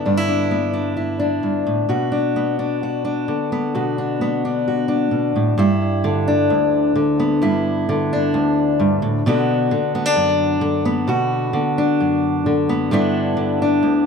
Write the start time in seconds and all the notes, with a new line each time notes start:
Already playing: D3 B3 D4
0.06 G2 D4
0.17 E4
0.28 D4
0.51 B3
0.74 D4
0.97 E4
1.20 D4
1.43 G2
1.67 A2
1.89 B2 F#4
2.12 D4
2.36 B3
2.59 D4
2.83 F#4
3.05 D4
3.28 D3
3.52 B3
3.75 B2 F#4
3.98 D4
4.21 B3
4.45 D4
4.68 F#4
4.88 D4
5.11 B2
5.36 A2
5.58 G2 E4
6.04 D3
6.28 D4
6.50 D2
6.96 D3
7.20 B3
7.42 G2 E4
7.89 D3
8.13 D4
8.34 D2
8.79 G2
9.02 A2
9.26 B2 D3 B3 D4 F#4
9.71 D3
9.95 B3
10.06 D4
10.16 F#2
10.61 D3
10.85 B3
11.07 B2 F#4
11.53 D3
11.78 D4
12.01 F#2
12.46 D3
12.69 B3
12.91 G2 D3 B3 D4 E4
13.37 D3
13.62 D4
13.83 D2